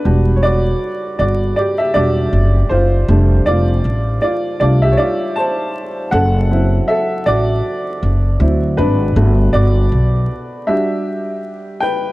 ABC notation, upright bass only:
X:1
M:4/4
L:1/8
Q:"Swing 16ths" 1/4=79
K:Em
V:1 name="Upright bass" clef=bass
E,,,2 z G,,, z E,,, F,,, F,,, | =F,,, F,,, A,,, z C,, z3 | F,,,2 z A,,, z F,,, D,, ^G,,, | G,,, G,,, B,,, z4 z |]